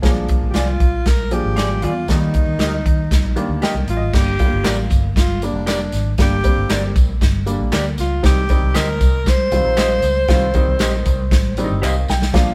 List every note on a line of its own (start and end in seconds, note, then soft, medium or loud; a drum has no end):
0.02 0.25 A#1 medium
0.02 0.66 F3 medium
0.02 0.67 G#3 medium
0.02 0.67 A#3 medium
0.02 0.09 C#4 medium
0.02 kick medium
0.02 snare medium
0.02 closed hi-hat medium
0.09 0.70 D4 medium
0.28 kick medium
0.28 closed hi-hat medium
0.42 0.53 A#1 medium
0.50 0.59 G4 medium
0.54 0.77 C2 loud
0.54 0.66 F4 medium
0.54 1.09 F4 medium
0.54 0.66 G#4 medium
0.54 0.67 D5 medium
0.54 snare loud
0.54 closed hi-hat medium
0.80 1.02 A#1 medium
0.80 kick medium
0.80 closed hi-hat medium
1.05 1.39 A#1 medium
1.05 1.34 A#4 medium
1.05 kick medium
1.05 snare loud
1.05 closed hi-hat medium
1.31 1.79 F3 medium
1.31 1.79 G#3 medium
1.31 1.79 A#3 medium
1.31 1.79 D4 medium
1.31 1.85 G4 medium
1.31 closed hi-hat medium
1.44 1.84 G#1 medium
1.56 1.68 F4 medium
1.56 1.69 G#4 medium
1.56 1.69 D5 medium
1.56 snare loud
1.56 closed hi-hat medium
1.82 2.05 E2 medium
1.82 1.91 F4 medium
1.82 2.09 F4 medium
1.82 1.92 G#4 medium
1.82 1.92 D5 medium
1.82 closed hi-hat medium
2.08 2.30 D#2 medium
2.08 2.72 D#3 medium
2.08 2.15 F3 soft
2.08 2.72 A#3 medium
2.08 2.72 D#4 medium
2.08 3.59 D#4 medium
2.08 kick medium
2.08 snare medium
2.08 closed hi-hat medium
2.15 2.75 G3 medium
2.34 kick medium
2.34 closed hi-hat medium
2.47 2.58 D#2 medium
2.59 2.82 D2 medium
2.59 2.71 G4 medium
2.59 2.71 A#4 medium
2.59 2.71 D#5 medium
2.59 snare loud
2.59 closed hi-hat medium
2.86 3.08 D#2 medium
2.86 kick medium
2.86 closed hi-hat medium
3.11 3.22 C2 medium
3.11 kick medium
3.11 snare loud
3.11 closed hi-hat medium
3.23 3.35 A#1 medium
3.36 3.84 D#3 medium
3.36 3.84 G3 medium
3.36 3.84 A#3 medium
3.36 3.85 D4 medium
3.36 closed hi-hat medium
3.48 3.60 D2 medium
3.62 3.73 G4 medium
3.62 3.74 A#4 medium
3.62 3.74 D#5 medium
3.62 3.94 G5 medium
3.62 snare loud
3.62 closed hi-hat medium
3.74 3.86 C2 medium
3.87 3.99 A1 medium
3.87 4.16 F4 medium
3.87 closed hi-hat medium
3.97 4.11 G#1 medium
3.97 4.13 D#5 medium
4.13 4.36 G1 medium
4.13 4.30 D3 medium
4.13 4.30 G3 medium
4.13 4.30 A#3 medium
4.13 4.30 D4 medium
4.13 4.91 G4 loud
4.13 kick medium
4.13 snare medium
4.13 crash medium
4.13 tambourine medium
4.39 5.03 D3 medium
4.39 5.03 G3 medium
4.39 4.46 A3 soft
4.39 5.03 F4 medium
4.39 kick medium
4.39 closed hi-hat medium
4.39 tambourine soft
4.46 5.06 A#3 medium
4.52 4.63 G1 loud
4.64 4.87 A1 medium
4.64 4.76 G4 medium
4.64 4.76 A#4 medium
4.64 4.77 D5 medium
4.64 snare loud
4.64 clap medium
4.64 closed hi-hat medium
4.64 tambourine medium
4.90 5.13 G1 medium
4.90 kick medium
4.90 closed hi-hat medium
4.90 tambourine medium
5.16 5.49 G1 medium
5.16 5.47 F4 medium
5.16 kick medium
5.16 snare loud
5.16 closed hi-hat medium
5.16 tambourine soft
5.42 5.90 D3 medium
5.42 5.90 G3 medium
5.42 5.90 A#3 medium
5.42 5.90 D4 medium
5.42 5.69 D4 medium
5.42 closed hi-hat medium
5.42 tambourine soft
5.53 5.87 F1 medium
5.66 6.17 D4 medium
5.66 5.78 G4 medium
5.66 5.79 A#4 medium
5.66 5.79 D5 medium
5.66 snare medium
5.66 clap medium
5.66 closed hi-hat medium
5.66 tambourine medium
5.92 6.15 G#1 medium
5.92 snare soft
5.92 closed hi-hat medium
5.92 tambourine medium
6.18 6.41 G1 loud
6.18 6.34 D3 medium
6.18 6.35 G3 medium
6.18 6.35 A#3 medium
6.18 6.35 D4 medium
6.18 6.93 G4 loud
6.18 kick medium
6.18 snare loud
6.18 closed hi-hat medium
6.18 tambourine medium
6.44 7.08 D3 medium
6.44 7.08 G3 medium
6.44 7.08 A#3 medium
6.44 7.08 C4 medium
6.44 kick medium
6.44 closed hi-hat medium
6.44 tambourine soft
6.56 6.68 G1 medium
6.69 6.92 G1 medium
6.69 6.81 G4 medium
6.69 6.82 A#4 medium
6.69 6.82 D5 medium
6.69 snare loud
6.69 clap medium
6.69 closed hi-hat medium
6.69 tambourine medium
6.96 7.18 A#1 medium
6.96 kick loud
6.96 closed hi-hat medium
6.96 tambourine medium
7.21 7.55 G1 medium
7.21 kick medium
7.21 snare loud
7.21 closed hi-hat medium
7.46 7.94 D3 medium
7.46 7.94 G3 medium
7.46 7.95 A#3 medium
7.46 7.95 D4 medium
7.46 closed hi-hat medium
7.46 tambourine medium
7.60 7.71 A#1 medium
7.72 7.95 D2 loud
7.72 7.84 G4 medium
7.72 7.84 A#4 medium
7.72 7.85 D5 medium
7.72 snare loud
7.72 clap medium
7.72 closed hi-hat medium
7.72 tambourine medium
7.98 8.21 C#2 medium
7.98 8.23 F4 medium
7.98 snare soft
7.98 closed hi-hat medium
7.98 tambourine medium
8.23 8.46 C2 medium
8.23 8.39 D#3 medium
8.23 8.39 G3 medium
8.23 8.39 C4 medium
8.23 8.39 D#4 medium
8.23 8.78 G4 loud
8.23 kick loud
8.23 snare loud
8.23 closed hi-hat medium
8.23 tambourine medium
8.49 9.13 D#3 medium
8.49 9.13 G3 medium
8.49 9.13 C4 medium
8.49 9.13 D#4 medium
8.49 kick medium
8.49 closed hi-hat medium
8.49 tambourine soft
8.63 8.74 C2 medium
8.74 8.98 D2 medium
8.74 8.86 G4 medium
8.74 9.30 A#4 loud
8.74 8.87 C5 medium
8.74 8.87 D#5 loud
8.74 snare loud
8.74 clap medium
8.74 closed hi-hat medium
8.74 tambourine medium
9.01 9.34 C2 medium
9.01 kick medium
9.01 closed hi-hat medium
9.01 tambourine medium
9.26 11.84 C5 loud
9.26 kick medium
9.26 snare loud
9.26 closed hi-hat medium
9.26 tambourine soft
9.51 9.63 C2 medium
9.51 10.00 D#3 medium
9.51 10.00 G3 medium
9.51 10.00 C4 medium
9.51 10.00 F4 medium
9.51 closed hi-hat medium
9.51 tambourine medium
9.65 9.98 A#1 medium
9.77 9.89 G4 medium
9.77 9.89 C5 medium
9.77 9.89 D#5 medium
9.77 snare loud
9.77 clap medium
9.77 closed hi-hat medium
9.77 tambourine medium
10.02 10.25 C#2 loud
10.02 closed hi-hat medium
10.02 tambourine medium
10.28 10.51 C2 loud
10.28 10.45 D#3 medium
10.28 10.45 G3 medium
10.28 10.45 C4 medium
10.28 10.45 F4 loud
10.28 kick medium
10.28 snare medium
10.28 closed hi-hat medium
10.28 tambourine medium
10.54 11.18 D#3 medium
10.54 11.18 G3 medium
10.54 11.18 C4 medium
10.54 11.18 D#4 medium
10.54 kick medium
10.54 closed hi-hat medium
10.54 tambourine soft
10.68 10.78 C2 loud
10.79 11.02 A#1 loud
10.79 10.91 G4 medium
10.79 10.92 C5 medium
10.79 10.92 D#5 medium
10.79 snare loud
10.79 clap medium
10.79 closed hi-hat medium
10.79 tambourine loud
11.05 11.31 C2 loud
11.05 kick loud
11.05 closed hi-hat medium
11.05 tambourine medium
11.31 11.64 A1 medium
11.31 kick medium
11.31 snare loud
11.31 closed hi-hat medium
11.31 tambourine soft
11.57 12.05 D#3 medium
11.57 12.05 G3 medium
11.57 12.05 C4 medium
11.57 11.64 D4 medium
11.57 closed hi-hat medium
11.57 tambourine medium
11.64 12.08 D#4 medium
11.70 11.81 G1 medium
11.82 12.04 C2 loud
11.82 11.94 G4 medium
11.82 11.94 C5 medium
11.82 11.94 D#5 medium
11.82 12.07 F5 medium
11.82 clap medium
11.82 tambourine medium
12.08 12.31 B1 medium
12.08 12.33 G5 medium
12.08 snare medium
12.08 tambourine medium
12.22 snare medium
12.34 12.54 A#1 loud
12.34 12.54 F3 medium
12.34 12.54 A#3 medium
12.34 12.54 D4 medium
12.34 12.54 F4 loud
12.34 kick medium
12.34 snare loud
12.34 closed hi-hat medium
12.34 tambourine medium